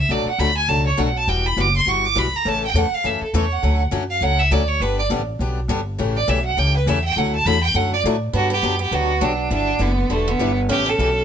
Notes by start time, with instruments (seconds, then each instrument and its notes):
0.00 violin E5
0.09 upright bass B1, steel-string acoustic guitar B2 F#3 A3 D4 F#4, violin D5
0.25 violin F#5, muted upright bass stroke
0.38 upright bass D2, steel-string acoustic guitar B2 F#3 A3 D4 F#4, violin B5
0.57 violin G#5
0.68 upright bass C#2, steel-string acoustic guitar B2 F#3 A3 D4 F#4, violin A5
0.87 violin C#5
0.97 upright bass B1, steel-string acoustic guitar B2 F#3 A3 D4 F#4, violin F#5
1.17 violin A5
1.27 upright bass E1, steel-string acoustic guitar E3 G3 B3 F#4, violin G5
1.46 violin B5
1.57 upright bass F#1, steel-string acoustic guitar E3 G3 B3 F#4, violin D6
1.76 violin C6
1.86 upright bass G1, steel-string acoustic guitar E3 G3 B3 F#4, violin C#6
2.06 violin D6
2.15 upright bass B1, steel-string acoustic guitar E3 G3 B3 F#4, violin B5
2.33 violin A#5, muted upright bass stroke
2.45 upright bass A1, steel-string acoustic guitar C#3 E3 A3 C#4 A4, violin A5
2.65 violin G5
2.74 upright bass E2, steel-string acoustic guitar C#3 E3 A3 C#4 A4, violin F#5
2.91 violin F5, muted upright bass stroke
3.04 upright bass F#2, steel-string acoustic guitar C#3 E3 A3 C#4 A4, violin E5
3.21 violin A4, muted upright bass stroke
3.33 upright bass E2, steel-string acoustic guitar C#3 E3 A3 C#4 A4, violin C#5
3.52 violin F#5
3.63 upright bass D2, steel-string acoustic guitar D3 F#3 A3 C#4 F#4
3.91 upright bass F#2, steel-string acoustic guitar D3 F#3 A3 C#4 F#4
4.11 violin F5
4.21 upright bass C#2, steel-string acoustic guitar D3 F#3 A3 C#4 F#4, violin F#5
4.40 violin E5
4.51 upright bass D2, steel-string acoustic guitar D3 F#3 A3 C#4 F#4, violin D5
4.68 violin C#5
4.80 upright bass G1, steel-string acoustic guitar D3 G3 B3 D4 G4, violin B4
4.99 violin D5
5.10 upright bass A1, steel-string acoustic guitar D3 G3 B3 D4 G4
5.39 upright bass B1, steel-string acoustic guitar D3 G3 B3 D4 G4
5.68 upright bass G1, steel-string acoustic guitar D3 G3 B3 D4 G4
5.98 upright bass A1, steel-string acoustic guitar C#3 E3 A3 C#4 G4
6.17 violin D5
6.28 upright bass B1, steel-string acoustic guitar C#3 E3 A3 C#4 G4, violin E5
6.45 violin F#5
6.57 upright bass C#2, steel-string acoustic guitar C#3 E3 A3 C#4 G4, violin G5
6.76 violin B4
6.86 upright bass E2, steel-string acoustic guitar C#3 E3 A3 C#4 G4, violin E5
7.04 violin G5
7.16 upright bass D2, steel-string acoustic guitar D3 F#3 A3 E4 F#4, violin F#5
7.35 violin A5
7.45 upright bass E2, steel-string acoustic guitar D3 F#3 A3 E4 F#4, violin B5
7.63 violin G5
7.74 upright bass F#2, steel-string acoustic guitar D3 F#3 A3 E4 F#4, violin F#5
7.93 violin D5
8.04 upright bass A2, steel-string acoustic guitar D3 F#3 A3 E4 F#4
8.33 upright bass G2, steel-string acoustic guitar D3 F#3 B3 D4 G4, violin F#4
8.50 steel-string acoustic guitar B3, violin G4
8.63 upright bass F#2, steel-string acoustic guitar D3 F#3 B3 D4 G4
8.79 steel-string acoustic guitar B3, violin G4
8.91 upright bass D2, steel-string acoustic guitar D3 F#3 B3 D4 G4, violin F#4
9.21 upright bass B1, steel-string acoustic guitar D3 F#3 B3 D4 G4, violin D4
9.50 upright bass G1, steel-string acoustic guitar F#3 G3 D4 E4 B4, violin D4
9.79 upright bass F#1, steel-string acoustic guitar D3 G3 D4 E4 B4, violin B3
10.10 upright bass E1, steel-string acoustic guitar D3 G3 D4 E4 B4, violin A3
10.28 steel-string acoustic guitar D3, violin B3
10.39 upright bass G1, steel-string acoustic guitar G3 D4 E4 B4
10.69 upright bass A1, steel-string acoustic guitar C#3 E3 A3 C#4 G4, violin G4
10.86 steel-string acoustic guitar C#4, violin A4
10.98 upright bass B1, steel-string acoustic guitar C#3 E3 A3 C#4 G4